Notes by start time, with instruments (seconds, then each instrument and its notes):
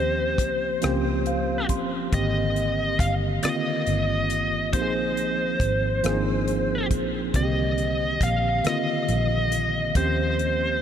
Already playing: fingered electric bass D#2, tine electric piano F3 A#3 C4 C#4 G4, lead electric guitar C5
0.38 fingered electric bass C#2, kick, closed hi-hat
0.82 fingered electric bass C#2, tine electric piano F3 A#3 C4 C#4 G4, cross-stick, closed hi-hat
1.26 tine electric piano F5, closed hi-hat
1.69 fingered electric bass G1, tine electric piano C6, kick, closed hi-hat
2.12 fingered electric bass G#1, tine electric piano D3 D#3 A#3 C4 G4, lead electric guitar D#5, kick, closed hi-hat
2.56 closed hi-hat
2.99 fingered electric bass G1, lead electric guitar F5, kick, closed hi-hat
3.43 tine electric piano D3 D#3 A#3 C4 F4, lead electric guitar D#5, muted fingered electric bass stroke, cross-stick, closed hi-hat
3.87 fingered electric bass G1, closed hi-hat
4.30 closed hi-hat
4.73 fingered electric bass A#1, tine electric piano F3 A#3 C4 D#4 G4, lead electric guitar C5, kick, closed hi-hat
4.82 tine electric piano G#4
5.17 closed hi-hat
5.60 fingered electric bass G#1, kick, closed hi-hat
6.04 fingered electric bass G#1, tine electric piano F3 A#3 C4 D4 G#4, cross-stick, closed hi-hat
6.12 tine electric piano D#4
6.48 closed hi-hat
6.91 fingered electric bass A#1, kick, closed hi-hat
7.34 fingered electric bass C2, tine electric piano D3 D#3 A#3 C4 F#4, lead electric guitar D#5, kick, closed hi-hat
7.43 tine electric piano G4
7.78 closed hi-hat
8.21 fingered electric bass A#1, lead electric guitar F5, kick, closed hi-hat
8.64 tine electric piano D3 D#3 A#3 C4 F4, lead electric guitar D#5, muted fingered electric bass stroke, cross-stick, closed hi-hat
9.08 fingered electric bass A#1, closed hi-hat
9.52 closed hi-hat
9.95 fingered electric bass D#2, tine electric piano F3 A#3 C4 C#4 G4, lead electric guitar C5, kick, closed hi-hat
10.39 closed hi-hat